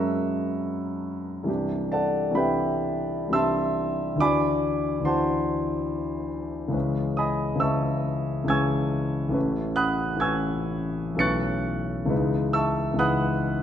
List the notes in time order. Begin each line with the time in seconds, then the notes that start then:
Already playing: F#2 F#3 G#3 C#4 A#4 E5 F#5 A#5 B5 C#6 D#6 E6 F#6
1.43 C2 E3 G3
1.47 D4 G4
1.92 A4 D5 F#5 A5
2.30 C2 E3 G3 D4
2.35 G4 B4 E5 G5 B5
3.28 C2 E3 G3 D4
3.33 G4 E5 A5 C6 E6
4.15 D2 D3 E3
4.20 E4 F#4 D5 G#5 B5 D6
5.00 D2 D3 E3
5.04 E4 F#4 C5 F#5 A5 C6
6.68 C#2 E3 G#3
6.72 C#4 B4
7.17 D#5 G#5 B5 D#6
7.55 C#2 E3 G#3 C#4
7.60 B4 E5 A5 C#6 E6
8.44 C#2 E3 G#3 C#4
8.48 B4 G#5 C#6 E6 G#6
9.29 A1 E3 A3 C#4
9.34 B4
9.76 F#5 B5 D#6 F#6
10.16 A1 E3 A3 C#4
10.20 B4 G#5 C#6 E6 G#6
11.14 B1 E3 A3 C#4
11.19 B4 C#6 F#6 A6 C#7
12.05 C#2 E3 G#3 D#4
12.10 B4
12.53 E5 A5 C#6 E6
12.94 C#2 E3 G#3 D#4
12.99 B4 F#5 B5 D#6 F#6